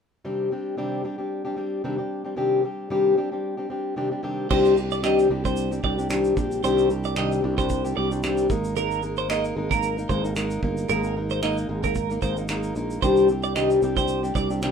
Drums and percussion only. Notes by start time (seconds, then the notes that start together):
4.50 kick, crash
4.65 shaker
4.77 shaker
4.91 shaker
5.04 finger snap, shaker
5.19 shaker
5.45 kick, shaker
5.56 shaker
5.72 shaker
5.84 kick
5.99 shaker
6.10 finger snap, shaker
6.24 shaker
6.37 kick, shaker
6.51 shaker
6.64 shaker
6.78 shaker
6.90 shaker
7.04 shaker
7.16 finger snap, shaker
7.32 shaker
7.58 finger snap, kick, shaker
7.69 kick, shaker
7.85 shaker
8.12 shaker
8.23 finger snap, shaker
8.37 shaker
8.50 kick, shaker
8.64 shaker
8.77 shaker
8.91 shaker
9.03 shaker
9.17 shaker
9.30 finger snap, shaker
9.44 shaker
9.71 finger snap, kick, shaker
9.83 shaker
9.98 shaker
10.09 kick, shaker
10.25 shaker
10.36 finger snap, shaker
10.50 shaker
10.63 kick
10.77 shaker
10.89 shaker
11.04 shaker
11.30 shaker
11.43 finger snap, shaker
11.57 shaker
11.84 kick, shaker
11.95 kick, shaker
12.11 shaker
12.22 kick, shaker
12.37 shaker
12.48 finger snap, shaker
12.63 shaker
12.76 shaker
12.90 shaker
13.02 kick, shaker
13.17 shaker
13.29 shaker
13.43 shaker
13.56 finger snap, shaker
13.70 shaker
13.82 shaker
13.97 kick, shaker
14.08 shaker
14.24 shaker
14.35 kick, shaker
14.50 shaker
14.62 finger snap, shaker